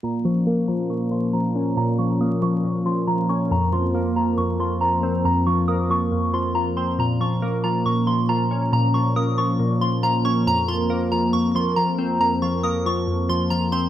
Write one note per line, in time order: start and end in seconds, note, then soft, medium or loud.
0.03 0.89 A#2 medium
0.03 6.95 F3 medium
0.03 10.43 A#3 medium
0.03 3.47 C#4 medium
0.03 10.43 A#4 medium
0.03 0.20 A#5 loud
0.25 0.67 F3 medium
0.25 0.41 C#6 medium
0.47 1.55 A#3 loud
0.68 1.10 F3 medium
0.68 0.84 A#5 medium
0.90 1.76 A#2 medium
0.90 1.06 C#6 medium
1.11 1.32 F3 medium
1.11 1.28 C6 medium
1.33 1.98 F3 medium
1.33 1.74 A#5 medium
1.55 2.64 C#4 medium
1.77 2.63 A#2 loud
1.77 1.94 A#5 loud
1.98 2.41 F3 medium
1.98 2.15 C#6 medium
2.21 3.29 A#3 medium
2.21 2.37 D#6 medium
2.42 2.84 F3 medium
2.42 2.83 C#6 medium
2.64 3.51 A#2 medium
2.86 3.06 F3 medium
2.86 3.02 C6 medium
3.07 3.51 F3 medium
3.07 3.24 A#5 medium
3.29 3.51 C#4 medium
3.29 3.46 C#6 medium
3.51 4.37 F2 medium
3.51 6.95 C4 medium
3.51 3.68 A#5 loud
3.73 4.15 F3 medium
3.73 3.89 C6 medium
3.94 5.03 A#3 medium
4.16 4.58 F3 medium
4.16 4.33 A#5 medium
4.38 5.24 F2 medium
4.38 4.54 C#6 medium
4.60 4.80 F3 medium
4.60 4.76 C6 medium
4.81 5.45 F3 medium
4.81 5.22 A#5 medium
5.03 6.12 C4 medium
5.25 6.11 F2 medium
5.25 5.41 A#5 medium
5.47 5.89 F3 medium
5.47 5.63 C#6 medium
5.68 6.77 A#3 medium
5.68 5.84 D#6 medium
5.90 6.32 F3 medium
5.90 6.31 C#6 medium
6.12 6.99 F2 medium
6.33 6.54 F3 medium
6.33 6.50 C6 medium
6.55 6.99 F3 medium
6.55 6.71 A#5 medium
6.77 6.99 C4 medium
6.77 6.93 C6 medium
6.99 7.84 A#2 medium
6.99 13.89 F3 medium
6.99 10.43 C#4 medium
6.99 7.16 A#5 loud
7.20 7.63 F3 medium
7.20 7.37 C#6 medium
7.42 8.51 A#3 loud
7.64 8.06 F3 medium
7.64 7.80 A#5 medium
7.86 8.71 A#2 medium
7.86 8.02 C#6 medium
8.07 8.28 F3 medium
8.07 8.24 C6 medium
8.29 8.93 F3 medium
8.29 8.70 A#5 medium
8.51 9.60 C#4 medium
8.72 9.58 A#2 loud
8.72 8.89 A#5 loud
8.94 9.37 F3 medium
8.94 9.11 C#6 medium
9.16 10.25 A#3 medium
9.16 9.33 D#6 medium
9.38 9.80 F3 medium
9.38 9.79 C#6 medium
9.59 10.46 A#2 medium
9.81 10.02 F3 medium
9.81 9.98 C6 medium
10.03 10.47 F3 medium
10.03 10.20 A#5 medium
10.25 10.47 C#4 medium
10.25 10.41 C#6 medium
10.46 11.32 F2 medium
10.46 13.89 A#3 medium
10.46 13.89 C4 medium
10.46 13.89 A#4 medium
10.46 10.63 A#5 loud
10.68 11.11 F3 medium
10.68 10.85 C6 medium
10.90 11.99 A#3 loud
11.12 11.54 F3 medium
11.12 11.28 A#5 medium
11.33 12.19 F2 medium
11.33 11.50 C#6 medium
11.55 11.76 F3 medium
11.55 11.72 C6 medium
11.76 12.41 F3 medium
11.76 12.18 A#5 medium
11.98 13.07 C4 medium
12.20 13.06 F2 medium
12.20 12.37 A#5 medium
12.42 12.85 F3 medium
12.42 12.58 C#6 medium
12.63 13.73 A#3 medium
12.63 12.80 D#6 medium
12.86 13.28 F3 medium
12.86 13.27 C#6 medium
13.07 13.89 F2 medium
13.29 13.50 F3 medium
13.29 13.46 C6 medium
13.50 13.89 F3 medium
13.50 13.67 A#5 medium
13.72 13.89 C4 medium
13.72 13.89 C6 medium